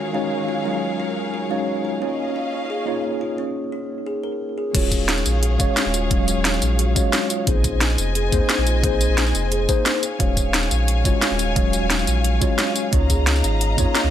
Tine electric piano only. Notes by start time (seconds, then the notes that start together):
Already playing: G#3 D#4 F4 F#4 C#5
0.13 G#3 D#4 F#4 C#5 F5
0.64 F#3 G#3 D#4 F4 C#5
1.49 G#3 D#4 F#4 C#5 F5
2.00 A#3 D#4 F4 C#5
2.86 A#3 D#4 F4 C#5
4.73 G#3 F4 F#4 C#5
5.59 G#3 F#4 C#5 F5
6.10 F#3 G#3 F4 C#5
6.95 G#3 F#4 C#5 F5
7.46 A#3 D#4 G#4 C5
8.31 A#3 D#4 G#4 C5
8.82 A#3 D#4 G#4 C5
9.68 A#3 D#4 G#4 C5
10.19 G#3 F#4 C#5 F5
11.04 G#3 F4 F#4 C#5
11.55 F#3 G#3 C#5 F5
12.40 G#3 F4 F#4 C#5
12.92 A#3 D#4 F4 C#5
13.77 A#3 D#4 F4 C#5